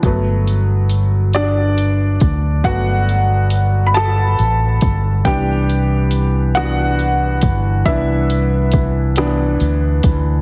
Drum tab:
HH |xxxxxx|xxxxxx|xxxxxx|xxxxxx|
SD |---r--|---r--|---r--|---r--|
BD |o----o|o----o|o----o|o-o--o|